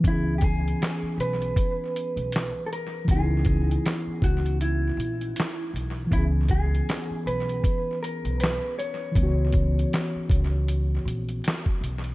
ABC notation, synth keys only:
X:1
M:4/4
L:1/8
Q:"Swing 16ths" 1/4=79
K:C#dor
V:1 name="Synth keys"
[E,B,CG]8 | [E,B,CDE]8 | [E,B,CG]8 | [E,B,CF]8 |]